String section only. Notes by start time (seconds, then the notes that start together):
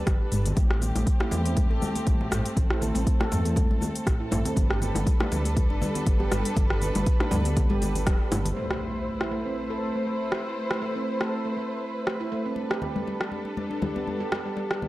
Already playing: G3 D4 A4 B4
0.57 A3 C4 G4
2.57 A4
4.57 G3 D4 B4
8.56 A3 E4 B4 C5
12.57 G3 D4 A4